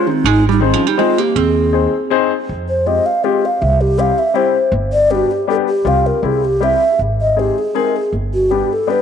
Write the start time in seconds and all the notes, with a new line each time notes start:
0.06 D#3 C#4
0.12 C4
0.24 G#1 G#3 D#4
0.49 G3 D#4
0.60 D#3 C4 D#4 G#4 C5
0.64 C4
0.73 F3 C#4
0.87 G3 D#4
0.98 G#3 C4 D#4 F4 G#4 C5
1.18 A#3 G4
1.36 D#2 C4 G#4
1.73 C4 D#4 G#4 C5
2.10 C4 D#4 G#4 C5
2.49 F2
2.69 C5
2.86 G#3 C4 F4 G4 D#5
3.06 F5
3.24 G#3 C4 F4 G4
3.45 F5
3.62 C2 E5
3.81 G4
3.98 G3 C4 E4 G4 F5
4.19 E5
4.34 G3 C4 E4 G4 C5
4.72 G1
4.93 D5
5.10 G3 B3 D4 G4
5.15 F#4
5.31 G4
5.47 G3 B3 D4 G4 A4
5.69 G4
5.84 C2 G3 C4 F4 G4 F5
6.06 A#4
6.22 C2 G3 C4 E4 G4 G#4
6.45 G4
6.60 G3 C4 E4 G4 E5
6.99 G#1
7.21 D#5
7.36 G#3 C4 D#4 G4 G#4
7.58 G#4
7.74 G#3 C4 D#4 G#4 A#4
7.96 G#4
8.12 G1
8.34 F#4
8.50 G3 B3 D4 G4
8.73 A4
8.87 G3 B3 D4 G4 B4